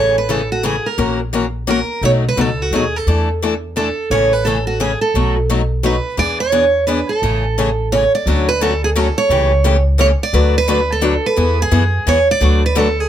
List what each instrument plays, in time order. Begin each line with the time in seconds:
Already playing: upright bass A1, steel-string acoustic guitar C#3 E3 A3 C#4 G#4 C#5
0.18 steel-string acoustic guitar B4
0.29 steel-string acoustic guitar C#3 E3 A3 C#4 G#4 A4
0.52 steel-string acoustic guitar F#4
0.63 steel-string acoustic guitar C#3 E3 A3 C#4 G#4
0.86 steel-string acoustic guitar A#4
0.98 upright bass A#1, steel-string acoustic guitar E3 A#3 C#4 F#4 A#4
1.33 steel-string acoustic guitar E3 A#3 C#4 F#4 A#4
1.67 steel-string acoustic guitar E3 A#3 C#4 F#4 A#4
2.01 upright bass B1, steel-string acoustic guitar B2 F#3 A3 D#4 F#4 C#5
2.29 steel-string acoustic guitar B4
2.36 upright bass C#2, steel-string acoustic guitar B2 F#3 A3 D#4 F#4
2.41 steel-string acoustic guitar A4
2.62 steel-string acoustic guitar F#4
2.71 upright bass D#2, steel-string acoustic guitar B2 F#3 A3 D#4 F#4
2.76 steel-string acoustic guitar G#4
2.96 steel-string acoustic guitar A4
3.07 upright bass E2, steel-string acoustic guitar E3 A3 D4 E4 A4
3.42 steel-string acoustic guitar E3 A3 D4 E4 A4
3.76 steel-string acoustic guitar E3 A3 D4 E4 A4
4.10 upright bass A1, steel-string acoustic guitar C#3 E3 A3 C#4 G#4 C#5
4.33 steel-string acoustic guitar B4
4.45 steel-string acoustic guitar C#3 E3 A3 C#4 G#4 A4
4.67 steel-string acoustic guitar F#4
4.80 steel-string acoustic guitar C#3 E3 A3 C#4 G#4
5.01 steel-string acoustic guitar A4
5.14 upright bass B1, steel-string acoustic guitar B2 F#3 A3 D#4 F#4
5.50 steel-string acoustic guitar B2 F#3 A3 D#4 F#4
5.83 steel-string acoustic guitar B2 F#3 A3 D#4 F#4 B4
6.17 upright bass E2, steel-string acoustic guitar E3 B3 D4 G#4 D5
6.40 steel-string acoustic guitar C#5
6.52 steel-string acoustic guitar E3 B3 D4 G#4
6.87 steel-string acoustic guitar E3 B3 D4 G#4 B4
7.09 steel-string acoustic guitar A4
7.22 upright bass A1, steel-string acoustic guitar C#3 E3 A3 C#4 G#4
7.58 steel-string acoustic guitar C#3 E3 A3 C#4 G#4
7.92 steel-string acoustic guitar C#3 E3 A3 C#4 G#4 C#5
8.15 steel-string acoustic guitar D5
8.26 upright bass D2, steel-string acoustic guitar D3 F#3 A3 C#4 F#4
8.49 steel-string acoustic guitar B4
8.61 steel-string acoustic guitar D3 F#3 A3 C#4 F#4 A4
8.84 steel-string acoustic guitar G#4
8.96 steel-string acoustic guitar D3 F#3 A3 C#4 F#4 A4
9.18 steel-string acoustic guitar C#5
9.29 upright bass C#2, steel-string acoustic guitar C#3 E3 A3 C#4 G4
9.64 steel-string acoustic guitar C#3 E3 A3 C#4 G4
9.98 steel-string acoustic guitar C#3 E3 A3 C#4 G4 C#5
10.23 steel-string acoustic guitar D5
10.33 upright bass D2, steel-string acoustic guitar D3 F#3 A3 D4 F#4 B4
10.58 steel-string acoustic guitar B4
10.68 steel-string acoustic guitar D3 F#3 A3 D4 F#4 B4
10.92 steel-string acoustic guitar A4
11.01 steel-string acoustic guitar D3 F#3 A3 D4 F#4 B4
11.26 steel-string acoustic guitar B4
11.36 upright bass E2, steel-string acoustic guitar E3 B3 E4 G#4
11.62 steel-string acoustic guitar G#4
11.71 upright bass F#2, steel-string acoustic guitar E3 B3 E4 G#4
12.06 upright bass E2, steel-string acoustic guitar E3 B3 E4 G#4 C#5
12.31 steel-string acoustic guitar D5
12.40 upright bass D2, steel-string acoustic guitar D3 F#3 A3 D4 F#4 B4
12.66 steel-string acoustic guitar B4
12.75 steel-string acoustic guitar D3 F#3 A3 D4 F#4 A4 B4
13.00 steel-string acoustic guitar G#4